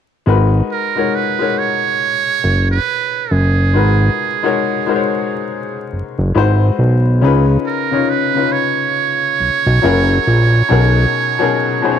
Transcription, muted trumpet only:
0.72 1.17 A#4 medium
1.15 1.60 B4 medium
1.58 2.71 C#5 loud
2.71 3.33 B4 medium
3.32 5.92 G#4 medium
7.66 8.11 A#4 medium
8.10 8.54 B4 medium
8.52 11.99 C#5 loud

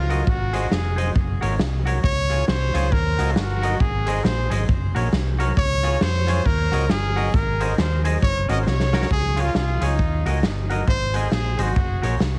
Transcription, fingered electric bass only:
0.00 0.21 C#2 medium
0.27 0.65 G#1 medium
0.71 1.09 F1 medium
1.16 1.38 F#1 loud
1.42 1.57 G#1 loud
1.59 1.97 C2 medium
2.04 2.41 C#2 loud
2.48 2.70 C2 medium
2.74 2.89 C#2 medium
2.92 3.15 D#2 medium
3.18 3.33 C#2 loud
3.36 3.73 G1 medium
3.80 4.18 G#1 loud
4.24 4.47 A#1 medium
4.51 4.66 G#1 medium
4.69 4.91 F#1 medium
4.95 5.10 A#1 medium
5.12 5.50 C2 medium
5.57 5.95 C#2 loud
6.01 6.39 F2 medium
6.45 6.68 D#2 loud
6.72 6.87 C#2 medium
6.90 7.27 G1 medium
7.34 7.71 G#1 loud
7.78 8.16 D#2 medium
8.22 8.45 F#1 loud
8.49 8.64 G#1 loud
8.66 9.04 C2 medium
9.10 9.48 C#2 loud
9.54 9.77 C2 medium
9.81 9.96 C#2 medium
9.99 10.22 D#2 medium
10.25 10.40 C#2 loud
10.42 10.80 G1 medium
10.88 11.25 G#1 medium
11.31 11.54 A#1 medium
11.58 11.73 G#1 medium
11.76 11.99 F#1 medium
12.03 12.18 A#1 medium
12.20 12.39 C2 medium

